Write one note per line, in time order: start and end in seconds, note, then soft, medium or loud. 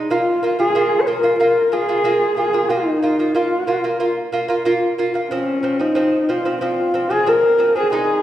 0.10 0.36 A#3 medium
0.10 0.56 F4 medium
0.10 0.37 F4 medium
0.43 0.56 A#3 medium
0.43 0.56 F4 medium
0.59 0.72 A#3 medium
0.59 0.72 F4 medium
0.59 1.03 G#4 medium
0.75 1.01 A#3 medium
0.75 1.02 F4 medium
1.01 1.09 C#5 medium
1.07 1.20 A#3 medium
1.07 1.21 F4 medium
1.07 1.39 A#4 medium
1.23 1.37 A#3 medium
1.23 1.37 F4 medium
1.40 1.66 A#3 medium
1.40 1.67 F4 medium
1.40 1.75 A#4 medium
1.72 1.85 A#3 medium
1.72 1.86 F4 medium
1.72 2.38 G#4 medium
1.89 2.02 A#3 medium
1.89 2.02 F4 medium
2.04 2.31 A#3 medium
2.04 2.31 F4 medium
2.37 2.50 A#3 medium
2.37 2.51 F4 medium
2.37 2.72 G#4 medium
2.53 2.67 A#3 medium
2.53 2.67 F4 medium
2.69 2.96 A#3 medium
2.69 3.37 D#4 medium
2.69 2.96 F4 medium
3.03 3.16 A#3 medium
3.03 3.16 F4 medium
3.19 3.32 A#3 medium
3.19 3.33 F4 medium
3.35 3.61 A#3 medium
3.35 3.62 F4 medium
3.35 4.01 F4 medium
3.67 3.81 A#3 medium
3.67 3.81 F4 medium
3.84 3.97 A#3 medium
3.84 3.98 F4 medium
4.00 4.26 A#3 medium
4.00 4.27 F4 medium
4.32 4.46 A#3 medium
4.32 4.46 F4 medium
4.48 4.62 A#3 medium
4.48 4.63 F4 medium
4.65 4.92 A#3 medium
4.65 4.92 F4 loud
4.98 5.12 A#3 medium
4.98 5.12 F4 medium
5.14 5.28 A#3 medium
5.14 5.28 F4 medium
5.31 5.57 F3 medium
5.31 5.58 C4 medium
5.31 5.83 C#4 medium
5.63 5.76 F3 medium
5.63 5.77 C4 medium
5.79 5.93 F3 medium
5.79 5.93 C4 medium
5.79 6.32 D#4 medium
5.95 6.22 F3 medium
5.95 6.23 C4 medium
6.29 6.42 F3 medium
6.29 6.42 C4 medium
6.29 6.62 F4 medium
6.45 6.58 F3 medium
6.45 6.59 C4 medium
6.61 6.88 F3 medium
6.61 6.88 C4 medium
6.61 7.13 F4 medium
6.94 7.07 F3 medium
6.94 7.08 C4 medium
7.10 7.24 F3 medium
7.10 7.24 C4 medium
7.10 7.30 G#4 loud
7.26 7.53 F3 medium
7.26 7.53 C4 medium
7.26 7.77 A#4 medium
7.59 7.72 F3 medium
7.59 7.73 C4 medium
7.76 7.89 F3 medium
7.76 7.90 C4 medium
7.76 7.92 G#4 medium
7.92 8.18 G#3 medium
7.92 8.19 D#4 medium
7.92 8.22 G#4 medium